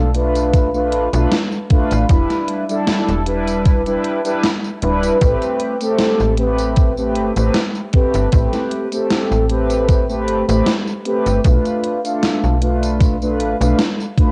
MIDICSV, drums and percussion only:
0, 0, Header, 1, 2, 480
1, 0, Start_track
1, 0, Key_signature, 0, "minor"
1, 0, Tempo, 779221
1, 1291, Time_signature, 4, 2, 24, 8
1, 8819, End_track
2, 0, Start_track
2, 0, Title_t, "Drums"
2, 89, Note_on_c, 9, 42, 82
2, 151, Note_off_c, 9, 42, 0
2, 218, Note_on_c, 9, 42, 55
2, 218, Note_on_c, 9, 54, 52
2, 280, Note_off_c, 9, 42, 0
2, 280, Note_off_c, 9, 54, 0
2, 330, Note_on_c, 9, 36, 123
2, 330, Note_on_c, 9, 42, 80
2, 330, Note_on_c, 9, 54, 44
2, 392, Note_off_c, 9, 36, 0
2, 392, Note_off_c, 9, 42, 0
2, 392, Note_off_c, 9, 54, 0
2, 458, Note_on_c, 9, 54, 26
2, 520, Note_off_c, 9, 54, 0
2, 568, Note_on_c, 9, 42, 83
2, 630, Note_off_c, 9, 42, 0
2, 698, Note_on_c, 9, 42, 58
2, 698, Note_on_c, 9, 54, 58
2, 760, Note_off_c, 9, 42, 0
2, 760, Note_off_c, 9, 54, 0
2, 811, Note_on_c, 9, 38, 127
2, 811, Note_on_c, 9, 42, 83
2, 811, Note_on_c, 9, 54, 45
2, 873, Note_off_c, 9, 38, 0
2, 873, Note_off_c, 9, 42, 0
2, 873, Note_off_c, 9, 54, 0
2, 937, Note_on_c, 9, 54, 26
2, 998, Note_off_c, 9, 54, 0
2, 1048, Note_on_c, 9, 42, 84
2, 1050, Note_on_c, 9, 36, 113
2, 1109, Note_off_c, 9, 42, 0
2, 1112, Note_off_c, 9, 36, 0
2, 1177, Note_on_c, 9, 42, 52
2, 1177, Note_on_c, 9, 54, 53
2, 1238, Note_off_c, 9, 42, 0
2, 1238, Note_off_c, 9, 54, 0
2, 1289, Note_on_c, 9, 42, 82
2, 1289, Note_on_c, 9, 54, 45
2, 1290, Note_on_c, 9, 36, 121
2, 1351, Note_off_c, 9, 36, 0
2, 1351, Note_off_c, 9, 42, 0
2, 1351, Note_off_c, 9, 54, 0
2, 1418, Note_on_c, 9, 38, 36
2, 1418, Note_on_c, 9, 42, 35
2, 1418, Note_on_c, 9, 54, 25
2, 1480, Note_off_c, 9, 38, 0
2, 1480, Note_off_c, 9, 42, 0
2, 1480, Note_off_c, 9, 54, 0
2, 1528, Note_on_c, 9, 42, 77
2, 1590, Note_off_c, 9, 42, 0
2, 1659, Note_on_c, 9, 42, 47
2, 1659, Note_on_c, 9, 54, 47
2, 1721, Note_off_c, 9, 42, 0
2, 1721, Note_off_c, 9, 54, 0
2, 1770, Note_on_c, 9, 38, 119
2, 1770, Note_on_c, 9, 42, 76
2, 1770, Note_on_c, 9, 54, 44
2, 1831, Note_off_c, 9, 38, 0
2, 1831, Note_off_c, 9, 42, 0
2, 1831, Note_off_c, 9, 54, 0
2, 1900, Note_on_c, 9, 42, 36
2, 1900, Note_on_c, 9, 54, 25
2, 1962, Note_off_c, 9, 42, 0
2, 1962, Note_off_c, 9, 54, 0
2, 2010, Note_on_c, 9, 42, 80
2, 2071, Note_off_c, 9, 42, 0
2, 2139, Note_on_c, 9, 42, 53
2, 2139, Note_on_c, 9, 54, 52
2, 2201, Note_off_c, 9, 42, 0
2, 2201, Note_off_c, 9, 54, 0
2, 2250, Note_on_c, 9, 42, 75
2, 2250, Note_on_c, 9, 54, 42
2, 2251, Note_on_c, 9, 36, 120
2, 2312, Note_off_c, 9, 42, 0
2, 2312, Note_off_c, 9, 54, 0
2, 2313, Note_off_c, 9, 36, 0
2, 2378, Note_on_c, 9, 42, 36
2, 2378, Note_on_c, 9, 54, 26
2, 2440, Note_off_c, 9, 42, 0
2, 2440, Note_off_c, 9, 54, 0
2, 2490, Note_on_c, 9, 42, 74
2, 2551, Note_off_c, 9, 42, 0
2, 2617, Note_on_c, 9, 42, 55
2, 2617, Note_on_c, 9, 54, 54
2, 2679, Note_off_c, 9, 42, 0
2, 2679, Note_off_c, 9, 54, 0
2, 2731, Note_on_c, 9, 38, 123
2, 2731, Note_on_c, 9, 42, 79
2, 2731, Note_on_c, 9, 54, 45
2, 2793, Note_off_c, 9, 38, 0
2, 2793, Note_off_c, 9, 42, 0
2, 2793, Note_off_c, 9, 54, 0
2, 2859, Note_on_c, 9, 54, 26
2, 2921, Note_off_c, 9, 54, 0
2, 2970, Note_on_c, 9, 42, 76
2, 3031, Note_off_c, 9, 42, 0
2, 3099, Note_on_c, 9, 42, 50
2, 3099, Note_on_c, 9, 54, 53
2, 3161, Note_off_c, 9, 42, 0
2, 3161, Note_off_c, 9, 54, 0
2, 3210, Note_on_c, 9, 42, 75
2, 3210, Note_on_c, 9, 54, 46
2, 3212, Note_on_c, 9, 36, 120
2, 3272, Note_off_c, 9, 42, 0
2, 3272, Note_off_c, 9, 54, 0
2, 3273, Note_off_c, 9, 36, 0
2, 3337, Note_on_c, 9, 42, 33
2, 3337, Note_on_c, 9, 54, 26
2, 3399, Note_off_c, 9, 42, 0
2, 3399, Note_off_c, 9, 54, 0
2, 3447, Note_on_c, 9, 42, 74
2, 3509, Note_off_c, 9, 42, 0
2, 3577, Note_on_c, 9, 42, 48
2, 3577, Note_on_c, 9, 54, 49
2, 3639, Note_off_c, 9, 42, 0
2, 3639, Note_off_c, 9, 54, 0
2, 3688, Note_on_c, 9, 38, 111
2, 3688, Note_on_c, 9, 42, 72
2, 3688, Note_on_c, 9, 54, 43
2, 3749, Note_off_c, 9, 38, 0
2, 3749, Note_off_c, 9, 42, 0
2, 3749, Note_off_c, 9, 54, 0
2, 3819, Note_on_c, 9, 54, 25
2, 3880, Note_off_c, 9, 54, 0
2, 3927, Note_on_c, 9, 42, 75
2, 3989, Note_off_c, 9, 42, 0
2, 4057, Note_on_c, 9, 42, 50
2, 4057, Note_on_c, 9, 54, 53
2, 4119, Note_off_c, 9, 42, 0
2, 4119, Note_off_c, 9, 54, 0
2, 4167, Note_on_c, 9, 42, 74
2, 4167, Note_on_c, 9, 54, 42
2, 4171, Note_on_c, 9, 36, 116
2, 4228, Note_off_c, 9, 42, 0
2, 4228, Note_off_c, 9, 54, 0
2, 4233, Note_off_c, 9, 36, 0
2, 4296, Note_on_c, 9, 54, 28
2, 4358, Note_off_c, 9, 54, 0
2, 4407, Note_on_c, 9, 42, 76
2, 4469, Note_off_c, 9, 42, 0
2, 4536, Note_on_c, 9, 42, 49
2, 4536, Note_on_c, 9, 54, 52
2, 4598, Note_off_c, 9, 42, 0
2, 4598, Note_off_c, 9, 54, 0
2, 4647, Note_on_c, 9, 38, 122
2, 4647, Note_on_c, 9, 42, 79
2, 4647, Note_on_c, 9, 54, 45
2, 4708, Note_off_c, 9, 38, 0
2, 4708, Note_off_c, 9, 42, 0
2, 4708, Note_off_c, 9, 54, 0
2, 4775, Note_on_c, 9, 54, 27
2, 4837, Note_off_c, 9, 54, 0
2, 4886, Note_on_c, 9, 42, 76
2, 4891, Note_on_c, 9, 36, 103
2, 4948, Note_off_c, 9, 42, 0
2, 4953, Note_off_c, 9, 36, 0
2, 5016, Note_on_c, 9, 42, 49
2, 5016, Note_on_c, 9, 54, 51
2, 5077, Note_off_c, 9, 42, 0
2, 5077, Note_off_c, 9, 54, 0
2, 5127, Note_on_c, 9, 42, 78
2, 5127, Note_on_c, 9, 54, 46
2, 5131, Note_on_c, 9, 36, 120
2, 5189, Note_off_c, 9, 42, 0
2, 5189, Note_off_c, 9, 54, 0
2, 5193, Note_off_c, 9, 36, 0
2, 5255, Note_on_c, 9, 38, 35
2, 5255, Note_on_c, 9, 42, 32
2, 5255, Note_on_c, 9, 54, 26
2, 5317, Note_off_c, 9, 38, 0
2, 5317, Note_off_c, 9, 42, 0
2, 5317, Note_off_c, 9, 54, 0
2, 5367, Note_on_c, 9, 42, 73
2, 5429, Note_off_c, 9, 42, 0
2, 5495, Note_on_c, 9, 42, 49
2, 5495, Note_on_c, 9, 54, 53
2, 5557, Note_off_c, 9, 42, 0
2, 5557, Note_off_c, 9, 54, 0
2, 5608, Note_on_c, 9, 38, 105
2, 5608, Note_on_c, 9, 42, 72
2, 5608, Note_on_c, 9, 54, 45
2, 5670, Note_off_c, 9, 38, 0
2, 5670, Note_off_c, 9, 42, 0
2, 5670, Note_off_c, 9, 54, 0
2, 5738, Note_on_c, 9, 54, 26
2, 5800, Note_off_c, 9, 54, 0
2, 5849, Note_on_c, 9, 42, 75
2, 5911, Note_off_c, 9, 42, 0
2, 5975, Note_on_c, 9, 42, 48
2, 5975, Note_on_c, 9, 54, 53
2, 6037, Note_off_c, 9, 42, 0
2, 6037, Note_off_c, 9, 54, 0
2, 6089, Note_on_c, 9, 42, 73
2, 6089, Note_on_c, 9, 54, 47
2, 6090, Note_on_c, 9, 36, 110
2, 6151, Note_off_c, 9, 42, 0
2, 6151, Note_off_c, 9, 54, 0
2, 6152, Note_off_c, 9, 36, 0
2, 6218, Note_on_c, 9, 54, 28
2, 6280, Note_off_c, 9, 54, 0
2, 6331, Note_on_c, 9, 42, 75
2, 6393, Note_off_c, 9, 42, 0
2, 6460, Note_on_c, 9, 42, 54
2, 6460, Note_on_c, 9, 54, 58
2, 6521, Note_off_c, 9, 42, 0
2, 6521, Note_off_c, 9, 54, 0
2, 6568, Note_on_c, 9, 38, 122
2, 6568, Note_on_c, 9, 42, 80
2, 6568, Note_on_c, 9, 54, 47
2, 6630, Note_off_c, 9, 38, 0
2, 6630, Note_off_c, 9, 42, 0
2, 6630, Note_off_c, 9, 54, 0
2, 6698, Note_on_c, 9, 54, 28
2, 6760, Note_off_c, 9, 54, 0
2, 6809, Note_on_c, 9, 42, 76
2, 6871, Note_off_c, 9, 42, 0
2, 6937, Note_on_c, 9, 42, 49
2, 6937, Note_on_c, 9, 54, 56
2, 6999, Note_off_c, 9, 42, 0
2, 6999, Note_off_c, 9, 54, 0
2, 7049, Note_on_c, 9, 42, 78
2, 7049, Note_on_c, 9, 54, 50
2, 7050, Note_on_c, 9, 36, 112
2, 7111, Note_off_c, 9, 42, 0
2, 7111, Note_off_c, 9, 54, 0
2, 7112, Note_off_c, 9, 36, 0
2, 7178, Note_on_c, 9, 42, 37
2, 7178, Note_on_c, 9, 54, 28
2, 7240, Note_off_c, 9, 42, 0
2, 7240, Note_off_c, 9, 54, 0
2, 7290, Note_on_c, 9, 42, 78
2, 7352, Note_off_c, 9, 42, 0
2, 7421, Note_on_c, 9, 42, 50
2, 7421, Note_on_c, 9, 54, 54
2, 7482, Note_off_c, 9, 42, 0
2, 7482, Note_off_c, 9, 54, 0
2, 7532, Note_on_c, 9, 38, 108
2, 7532, Note_on_c, 9, 42, 75
2, 7532, Note_on_c, 9, 54, 48
2, 7593, Note_off_c, 9, 38, 0
2, 7593, Note_off_c, 9, 42, 0
2, 7593, Note_off_c, 9, 54, 0
2, 7660, Note_on_c, 9, 54, 28
2, 7722, Note_off_c, 9, 54, 0
2, 7772, Note_on_c, 9, 42, 78
2, 7833, Note_off_c, 9, 42, 0
2, 7903, Note_on_c, 9, 42, 52
2, 7903, Note_on_c, 9, 54, 57
2, 7964, Note_off_c, 9, 42, 0
2, 7964, Note_off_c, 9, 54, 0
2, 8011, Note_on_c, 9, 36, 115
2, 8014, Note_on_c, 9, 42, 78
2, 8014, Note_on_c, 9, 54, 48
2, 8073, Note_off_c, 9, 36, 0
2, 8075, Note_off_c, 9, 42, 0
2, 8075, Note_off_c, 9, 54, 0
2, 8143, Note_on_c, 9, 54, 28
2, 8204, Note_off_c, 9, 54, 0
2, 8254, Note_on_c, 9, 42, 77
2, 8316, Note_off_c, 9, 42, 0
2, 8385, Note_on_c, 9, 42, 56
2, 8385, Note_on_c, 9, 54, 57
2, 8446, Note_off_c, 9, 42, 0
2, 8446, Note_off_c, 9, 54, 0
2, 8492, Note_on_c, 9, 38, 113
2, 8492, Note_on_c, 9, 42, 81
2, 8492, Note_on_c, 9, 54, 49
2, 8554, Note_off_c, 9, 38, 0
2, 8554, Note_off_c, 9, 42, 0
2, 8554, Note_off_c, 9, 54, 0
2, 8624, Note_on_c, 9, 54, 28
2, 8686, Note_off_c, 9, 54, 0
2, 8732, Note_on_c, 9, 36, 100
2, 8734, Note_on_c, 9, 42, 77
2, 8793, Note_off_c, 9, 36, 0
2, 8796, Note_off_c, 9, 42, 0
2, 8819, End_track
0, 0, End_of_file